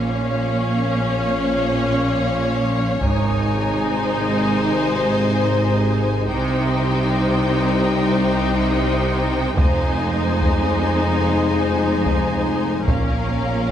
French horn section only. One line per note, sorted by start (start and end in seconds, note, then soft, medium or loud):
0.00 2.97 F3 medium
0.00 2.97 C#4 medium
3.01 6.26 C3 medium
3.01 6.27 G#3 medium
6.30 9.41 G3 medium
6.30 9.41 D#4 medium
9.58 12.83 G#3 medium
9.58 12.84 D#4 medium
12.89 13.71 F3 soft
12.89 13.71 C#4 soft